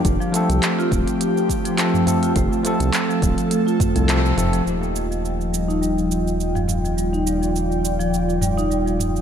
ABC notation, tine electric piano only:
X:1
M:4/4
L:1/8
Q:"Swing 16ths" 1/4=104
K:Eblyd
V:1 name="Tine electric piano"
z [F,A,CA]4- [F,A,CA] [F,A,CA] [F,A,CA] | z [F,A,CA]4- [F,A,CA] [F,A,CA] [F,A,CA] | [F,B,EG]8- | [F,B,EG]8 |]